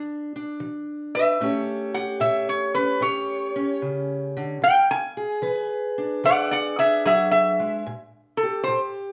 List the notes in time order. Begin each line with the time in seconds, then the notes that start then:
Already playing: E3 D4
0.36 D4
0.60 E3
1.15 B4 E5
1.40 A2 A3 C#4 G4 C#5
1.94 G4 F#5
2.20 A2 C#5 E5
2.49 C#5
2.75 C#4 B4
3.00 A2 G4 C#5
3.56 C#4
3.82 C#3
4.37 D3
4.62 E3 G5
4.91 G#5
5.17 G#4
5.42 E3 B4
5.98 D4
6.24 E3 G#4 D5 F#5
6.51 D5 F#5
6.79 D4 G#4 E5
7.05 F#3 G#4 E5
7.31 E5
7.60 G#3
7.86 A2
8.37 A4
8.43 G4
8.64 A2 C5
8.68 G4